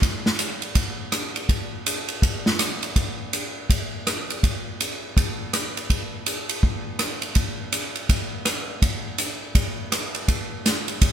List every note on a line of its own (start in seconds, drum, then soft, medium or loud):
0.02 kick soft
0.02 ride medium
0.26 snare soft
0.39 hi-hat pedal medium
0.39 ride medium
0.62 ride soft
0.75 kick soft
0.75 ride medium
1.12 cross-stick medium
1.12 hi-hat pedal medium
1.12 ride medium
1.36 ride soft
1.49 kick soft
1.49 ride medium
1.86 hi-hat pedal medium
1.86 ride medium
2.08 ride soft
2.22 kick soft
2.22 ride medium
2.46 snare soft
2.59 cross-stick medium
2.59 hi-hat pedal medium
2.59 ride medium
2.83 ride soft
2.96 kick soft
2.96 ride medium
3.33 hi-hat pedal medium
3.33 ride medium
3.70 kick soft
3.70 ride medium
4.07 cross-stick medium
4.07 hi-hat pedal soft
4.07 ride medium
4.30 ride soft
4.43 kick soft
4.43 ride medium
4.80 hi-hat pedal medium
4.80 ride medium
5.17 kick soft
5.17 ride medium
5.53 cross-stick medium
5.53 hi-hat pedal medium
5.53 ride medium
5.77 ride soft
5.90 kick soft
5.90 ride medium
6.26 hi-hat pedal soft
6.26 ride medium
6.49 ride medium
6.63 kick soft
6.99 cross-stick medium
6.99 hi-hat pedal medium
6.99 ride medium
7.22 ride soft
7.35 kick soft
7.35 ride medium
7.72 hi-hat pedal medium
7.72 ride medium
7.95 ride soft
8.09 kick soft
8.09 ride medium
8.45 cross-stick medium
8.45 hi-hat pedal medium
8.45 ride medium
8.82 kick soft
8.82 ride medium
9.18 hi-hat pedal medium
9.18 ride medium
9.55 kick soft
9.55 ride medium
9.92 cross-stick medium
9.92 hi-hat pedal soft
9.92 ride medium
10.15 ride soft
10.28 kick soft
10.28 ride medium
10.66 snare soft
10.66 hi-hat pedal medium
10.66 ride medium
10.88 ride soft
11.01 kick soft
11.01 ride medium